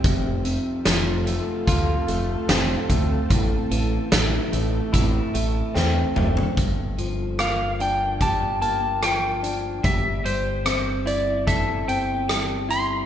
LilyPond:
<<
  \new Staff \with { instrumentName = "Electric slide guitar" } { \time 4/4 \key g \dorian \tempo 4 = 74 r1 | r1 | r4 f''8 g''8 a''8 a''8 g''4 | e''8 c''4 d''8 e''8 g''4 c'''8 | }
  \new Staff \with { instrumentName = "Ambient pad" } { \time 4/4 \key g \dorian << { <c' a' a''>1~ | <c' a' a''>1 | r1 | r1 | } \\ { f''1 | e''1 | r1 | r1 | } >> }
  \new Staff \with { instrumentName = "Clean electric guitar" } { \time 4/4 \key g \dorian f,8 c8 f8 a8 f'8 a8 c'8 a8 | a,8 e8 e8 a8 e'8 a8 c'8 a8 | g,8 f8 bes8 d'8 g'8 bes8 f8 d'8 | g8 g8 c'8 e'8 a'8 c'8 g8 e'8 | }
  \new Staff \with { instrumentName = "Fingered electric bass" } { \clef bass \time 4/4 \key g \dorian f,,4 f,,4 d,8 f,,8 f,,8 d,8 | a,,8 a,,8 a,,8 a,,8 a,,8 a,,8 e,8 fis,,8 | g,,1 | g,,1 | }
  \new DrumStaff \with { instrumentName = "Drums" } \drummode { \time 4/4 <hh bd>8 hh8 <hh sn>8 hh8 <hh bd>8 hh8 <hh sn>8 <hh bd>8 | <hh bd>8 hh8 <hh sn>8 hh8 <hh bd>8 hh8 sn8 toml16 tomfh16 | <hh bd>8 hh8 <hh ss>8 hh8 <hh bd>8 hh8 <hh ss>8 hh8 | <hh bd>8 hh8 <hh ss>8 hh8 <hh bd>8 hh8 <hh ss>8 hh8 | }
>>